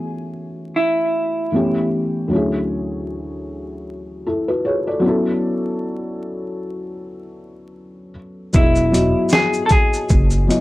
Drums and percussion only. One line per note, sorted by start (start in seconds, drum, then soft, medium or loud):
8.53 kick loud
8.53 shaker medium
8.76 shaker soft
8.94 closed hi-hat medium
8.94 shaker soft
9.29 snare loud
9.29 shaker medium
9.53 shaker medium
9.69 kick medium
9.69 closed hi-hat medium
9.69 shaker soft
9.94 shaker soft
10.09 kick medium
10.09 shaker medium
10.30 shaker medium
10.50 closed hi-hat medium
10.50 shaker soft